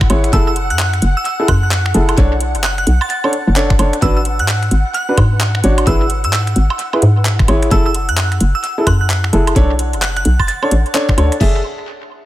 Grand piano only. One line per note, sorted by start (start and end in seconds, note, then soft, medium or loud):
0.10 0.29 E4 medium
0.10 0.30 G#4 medium
0.10 0.29 C#5 medium
0.33 0.47 E4 loud
0.33 0.47 G#4 medium
0.33 0.47 A4 loud
1.40 1.48 E4 medium
1.40 1.48 G#4 medium
1.40 1.48 A4 medium
1.94 2.14 E4 medium
1.94 2.14 G#4 medium
1.94 2.14 A4 medium
2.18 2.32 D4 medium
2.18 2.32 A4 medium
2.18 2.32 C#5 loud
3.24 3.33 D4 medium
3.24 3.33 A4 medium
3.24 3.33 C#5 medium
3.56 3.70 D4 medium
3.56 3.70 A4 medium
3.56 3.70 C#5 loud
3.79 3.94 D4 medium
3.79 3.93 A4 medium
3.79 3.93 C#5 medium
4.02 4.17 D4 medium
4.02 4.17 F#4 medium
4.02 4.17 B4 loud
5.09 5.18 D4 medium
5.09 5.18 F#4 medium
5.09 5.18 B4 medium
5.64 5.83 D4 medium
5.64 5.83 F#4 medium
5.64 5.83 C#5 medium
5.87 6.01 E4 medium
5.87 6.01 G#4 medium
5.87 6.01 B4 loud
6.93 7.02 E4 medium
6.93 7.02 G#4 medium
6.93 7.02 B4 medium
7.48 7.68 E4 medium
7.48 7.68 G#4 medium
7.48 7.68 C#5 medium
7.71 7.86 E4 loud
7.71 7.86 G#4 medium
7.71 7.86 A4 loud
8.78 8.87 E4 medium
8.78 8.87 G#4 medium
8.78 8.87 A4 medium
9.33 9.53 E4 medium
9.33 9.53 G#4 medium
9.33 9.53 A4 medium
9.56 9.70 D4 loud
9.56 9.70 A4 medium
9.56 9.70 C#5 loud
10.62 10.71 D4 medium
10.62 10.71 A4 medium
10.62 10.71 C#5 medium
10.94 11.09 D4 medium
10.94 11.09 A4 medium
10.94 11.09 C#5 medium
11.17 11.32 D4 medium
11.17 11.32 A4 medium
11.17 11.32 C#5 medium
11.41 11.59 G#4 medium
11.41 11.59 A4 medium
11.41 11.59 E5 medium